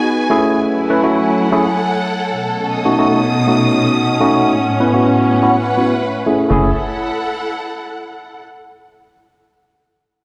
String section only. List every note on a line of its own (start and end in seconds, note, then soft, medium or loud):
0.00 1.20 F#4 medium
0.00 1.20 B4 medium
0.00 1.20 G#5 medium
0.41 2.36 E4 medium
0.78 5.18 A4 medium
0.86 3.25 F#5 medium
2.36 4.56 B2 medium
2.58 6.51 C#4 medium
2.69 5.35 D#6 medium
4.56 6.51 A2 medium
4.94 6.51 F#5 medium
5.09 6.51 B4 medium
6.51 8.42 E4 medium
6.59 8.42 A4 medium
6.67 8.42 F#5 medium